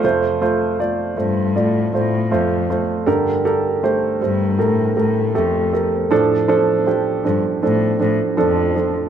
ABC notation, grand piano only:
X:1
M:4/4
L:1/8
Q:1/4=79
K:F
V:1 name="Grand piano"
[A,Fc] [A,Fc] [A,Fd] [A,Fc] [A,Fd] [A,Fc] [A,Fc] [A,Fc] | [GAB] [GAB] [A,Gc] [A,Gc] [GAB] [GAB] [A,GA] [GAB] | [F,DA] [F,DA] [F,DG] [F,DA] [F,DA] [F,DA] [F,DA] [F,DA] |]
V:2 name="Grand piano" clef=bass
[F,,C,]8 | [G,,D,]8 | A,,8 |]